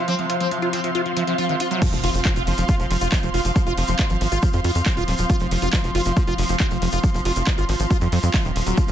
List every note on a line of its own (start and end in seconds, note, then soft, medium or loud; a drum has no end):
0.00 1.81 F3 medium
0.00 8.92 C4 medium
0.00 8.92 F4 medium
0.00 8.92 F5 medium
0.00 8.92 C6 medium
0.08 0.15 F3 medium
0.08 0.14 C4 medium
0.08 closed hi-hat soft
0.19 0.25 C3 medium
0.19 0.26 F3 medium
0.19 closed hi-hat soft
0.30 0.36 C3 medium
0.30 0.36 F4 loud
0.30 closed hi-hat medium
0.40 0.47 F3 medium
0.40 0.47 C4 medium
0.40 closed hi-hat medium
0.51 0.58 C3 medium
0.51 0.58 F3 medium
0.51 closed hi-hat soft
0.62 0.69 C3 medium
0.62 0.69 F4 loud
0.62 closed hi-hat soft
0.73 0.80 F3 medium
0.73 0.79 C4 medium
0.73 closed hi-hat medium
0.84 0.90 C3 medium
0.84 0.91 F3 medium
0.84 closed hi-hat soft
0.95 1.01 C3 medium
0.95 1.02 F4 loud
0.95 closed hi-hat medium
0.95 swell medium
1.06 1.12 F3 medium
1.06 closed hi-hat soft
1.17 1.23 C3 medium
1.17 1.23 F3 loud
1.17 closed hi-hat medium
1.27 1.34 C3 medium
1.27 1.34 F3 medium
1.27 closed hi-hat soft
1.38 1.48 F3 medium
1.38 1.45 F4 medium
1.38 closed hi-hat soft
1.49 1.56 C3 medium
1.49 1.56 D#3 medium
1.49 closed hi-hat soft
1.60 1.66 F4 medium
1.60 closed hi-hat medium
1.71 1.77 C3 medium
1.71 1.81 F#3 loud
1.71 closed hi-hat soft
1.82 8.92 F3 medium
1.82 kick loud
1.82 closed hi-hat medium
1.82 crash loud
1.82 impact medium
1.82 shaker medium
1.93 1.99 F1 medium
1.93 1.99 F3 medium
1.93 closed hi-hat soft
1.93 shaker soft
2.04 2.10 F1 loud
2.04 2.10 F4 loud
2.04 open hi-hat loud
2.14 2.21 F1 loud
2.14 2.21 F3 medium
2.14 closed hi-hat medium
2.14 shaker medium
2.25 2.32 F3 medium
2.25 kick loud
2.25 clap loud
2.25 closed hi-hat medium
2.25 shaker medium
2.36 2.43 F1 medium
2.36 2.43 F4 loud
2.36 closed hi-hat soft
2.36 shaker soft
2.47 2.54 F#1 loud
2.47 2.54 F3 medium
2.47 open hi-hat medium
2.58 2.64 F1 medium
2.58 2.65 F3 medium
2.58 closed hi-hat medium
2.58 shaker medium
2.68 2.75 F4 loud
2.68 kick loud
2.68 closed hi-hat medium
2.68 shaker medium
2.80 2.86 F1 medium
2.80 2.86 F3 medium
2.80 closed hi-hat soft
2.80 shaker soft
2.91 2.97 F1 loud
2.91 2.97 F3 medium
2.91 open hi-hat loud
3.01 3.08 F1 medium
3.01 3.08 F4 loud
3.01 closed hi-hat medium
3.01 shaker medium
3.12 3.19 F3 medium
3.12 kick loud
3.12 clap loud
3.12 closed hi-hat medium
3.12 shaker medium
3.23 3.30 F1 medium
3.23 3.30 F3 medium
3.23 closed hi-hat soft
3.23 shaker soft
3.34 3.41 F1 loud
3.34 3.41 F4 loud
3.34 open hi-hat medium
3.45 3.51 F1 medium
3.45 3.52 F3 medium
3.45 closed hi-hat medium
3.45 shaker medium
3.56 3.62 F3 medium
3.56 kick loud
3.56 closed hi-hat medium
3.56 shaker medium
3.67 3.73 F1 medium
3.67 3.73 F4 loud
3.67 closed hi-hat soft
3.67 shaker soft
3.77 3.84 F1 loud
3.77 3.84 F3 medium
3.77 open hi-hat loud
3.88 3.95 F1 medium
3.88 3.95 F3 medium
3.88 closed hi-hat medium
3.88 shaker medium
3.99 4.06 F4 loud
3.99 kick loud
3.99 clap loud
3.99 closed hi-hat medium
3.99 shaker medium
4.10 4.17 G#1 medium
4.10 4.17 F3 medium
4.10 closed hi-hat soft
4.10 shaker soft
4.21 4.28 G#1 loud
4.21 4.28 F3 medium
4.21 open hi-hat loud
4.32 4.38 G#1 loud
4.32 4.39 F4 loud
4.32 closed hi-hat medium
4.32 shaker medium
4.42 4.49 F3 medium
4.42 kick loud
4.42 closed hi-hat medium
4.42 shaker medium
4.53 4.60 F2 medium
4.53 4.60 F3 medium
4.53 closed hi-hat soft
4.53 shaker soft
4.64 4.71 F2 loud
4.64 4.71 F4 loud
4.64 open hi-hat loud
4.75 4.82 F2 medium
4.75 4.82 F3 medium
4.75 closed hi-hat medium
4.75 shaker medium
4.86 4.93 F3 medium
4.86 kick loud
4.86 clap loud
4.86 closed hi-hat medium
4.86 shaker medium
4.97 5.04 D#1 medium
4.97 5.04 F4 loud
4.97 closed hi-hat soft
4.97 shaker soft
5.08 5.14 D#1 loud
5.08 5.15 F3 medium
5.08 open hi-hat loud
5.18 5.25 D#1 medium
5.18 5.26 F3 medium
5.18 closed hi-hat medium
5.18 shaker medium
5.30 5.36 F4 loud
5.30 kick loud
5.30 closed hi-hat medium
5.30 shaker medium
5.40 5.47 F1 medium
5.40 5.47 F3 medium
5.40 closed hi-hat soft
5.40 shaker soft
5.51 5.58 F1 loud
5.51 5.58 F3 medium
5.51 open hi-hat loud
5.62 5.69 F1 medium
5.62 5.69 F4 loud
5.62 closed hi-hat medium
5.62 shaker medium
5.73 5.80 F3 medium
5.73 kick loud
5.73 clap loud
5.73 closed hi-hat medium
5.73 shaker medium
5.84 5.91 F1 medium
5.84 5.91 F3 medium
5.84 closed hi-hat soft
5.84 shaker soft
5.95 6.01 F#1 loud
5.95 6.02 F4 loud
5.95 open hi-hat loud
6.05 6.12 F1 loud
6.05 6.12 F3 medium
6.05 closed hi-hat medium
6.05 shaker medium
6.17 6.23 F3 medium
6.17 kick loud
6.17 closed hi-hat medium
6.17 shaker medium
6.27 6.34 F1 medium
6.27 6.34 F4 loud
6.27 closed hi-hat soft
6.27 shaker soft
6.38 6.45 F1 loud
6.38 6.45 F3 medium
6.38 open hi-hat loud
6.49 6.56 F1 medium
6.49 6.56 F3 medium
6.49 closed hi-hat medium
6.49 shaker medium
6.60 6.67 F4 loud
6.60 kick loud
6.60 clap loud
6.60 closed hi-hat medium
6.60 shaker medium
6.71 6.78 F1 medium
6.71 6.78 F3 medium
6.71 closed hi-hat soft
6.71 shaker soft
6.82 6.88 F1 loud
6.82 6.89 F3 medium
6.82 open hi-hat loud
6.92 6.99 F1 medium
6.92 6.99 F4 loud
6.92 closed hi-hat medium
6.92 shaker medium
7.03 7.10 F3 medium
7.03 kick loud
7.03 closed hi-hat soft
7.03 shaker medium
7.14 7.21 F1 medium
7.14 7.21 F3 medium
7.14 closed hi-hat soft
7.14 shaker soft
7.25 7.32 F1 loud
7.25 7.32 F4 loud
7.25 open hi-hat loud
7.36 7.43 F1 medium
7.36 7.43 F3 medium
7.36 closed hi-hat medium
7.36 shaker medium
7.47 7.54 F3 medium
7.47 kick loud
7.47 clap loud
7.47 closed hi-hat medium
7.47 shaker medium
7.58 7.64 G#1 medium
7.58 7.65 F4 loud
7.58 closed hi-hat soft
7.58 shaker soft
7.69 7.75 G#1 loud
7.69 7.76 F3 medium
7.69 open hi-hat loud
7.79 7.86 G#1 loud
7.79 7.86 F3 medium
7.79 closed hi-hat medium
7.79 shaker medium
7.91 7.97 F4 loud
7.91 kick loud
7.91 closed hi-hat medium
7.91 shaker medium
8.01 8.08 F2 medium
8.01 8.08 F3 medium
8.01 closed hi-hat soft
8.01 shaker soft
8.12 8.19 F2 loud
8.12 8.19 F3 loud
8.12 open hi-hat loud
8.23 8.30 F2 medium
8.23 8.30 F3 medium
8.23 closed hi-hat medium
8.23 shaker medium
8.34 8.44 F3 medium
8.34 kick loud
8.34 clap loud
8.34 closed hi-hat medium
8.34 shaker medium
8.45 8.51 D#1 medium
8.45 8.52 D#3 medium
8.45 closed hi-hat soft
8.45 shaker soft
8.56 8.62 D#1 loud
8.56 open hi-hat loud
8.67 8.73 D#1 medium
8.67 8.77 F#3 loud
8.67 closed hi-hat medium
8.67 shaker medium
8.77 8.84 F3 medium
8.77 kick loud
8.77 closed hi-hat medium
8.77 shaker medium
8.88 8.92 F1 medium
8.88 8.92 F3 medium
8.88 closed hi-hat soft
8.88 shaker soft